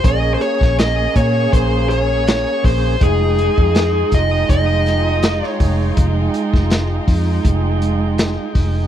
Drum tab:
HH |x-x-x-x-x-x-x-o-|x-x-x-x-x-x-x-o-|x-x-x-o-x-x-x-o-|
SD |---oo-------o---|----o-----o-oo--|---oo-------o---|
BD |o--o--o-o-----o-|o--o--o-o-----o-|o--o--o-o-----o-|